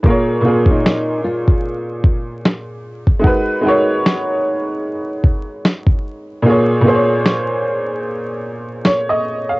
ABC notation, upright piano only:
X:1
M:4/4
L:1/16
Q:"Swing 16ths" 1/4=75
K:A#phr
V:1 name="Upright piano"
[A,,A,EGc]2 [A,,A,EGA]6 z8 | [G,DFAB]2 [G,DFAc]6 z8 | [A,,A,EGc]2 [A,,A,EG^Bc]6 z4 c d2 e |]